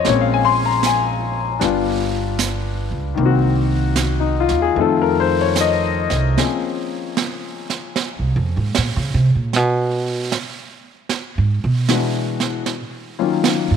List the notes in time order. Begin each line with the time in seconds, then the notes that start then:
0.04 A#1 G#3 A#3 C4 C#5, brush sweep, snare
0.09 C#4
0.21 F5
0.34 G#5
0.45 C6
0.65 A#5
0.83 G#5, snare, hi-hat pedal
1.59 G1 G3 B3 D4, brush sweep, snare
1.64 F4
2.39 snare, hi-hat pedal
2.91 C#2
3.15 C2 D#3 A#3, brush sweep
3.21 C4
3.26 F#4
3.96 snare, hi-hat pedal
4.20 D#4
4.40 F4
4.49 D#2, snare
4.62 G#4
4.74 F2 D#3 A3 C4, brush sweep
4.79 F4 A4
5.02 A#4
5.20 C5
5.41 C#5
5.56 snare, hi-hat pedal
5.61 D#5
6.10 C2, snare
6.37 F3 A#3 C4 C#4 G#4, brush sweep, snare
7.17 snare
7.70 snare
7.96 brush sweep, snare
8.19 C2
8.36 F2
8.57 G#2
8.75 A#2, snare
8.97 C#3
9.14 C3
9.35 A#2
9.53 B2, brush sweep, snare
10.32 snare
11.09 brush sweep, snare
11.38 G#2
11.64 B2
11.89 E3 G#3 B3 D4 F#4, snare
12.40 snare
12.66 brush sweep, snare
13.19 D#3 F#3 A#3 C#4 F4
13.44 snare
13.71 G#2